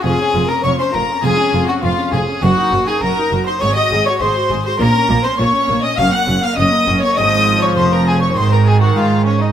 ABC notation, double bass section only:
X:1
M:4/4
L:1/8
Q:1/4=101
K:Db
V:1 name="Double bass section" clef=bass
F,,, F,,, F,,, F,,, F,,, F,,, F,,, F,,, | G,,, G,,, G,,, G,,, A,,, A,,, A,,, A,,, | B,,, B,,, B,,, B,,, G,,, G,,, G,,, G,,, | A,,,2 F,,,2 A,,,2 A,,2 |]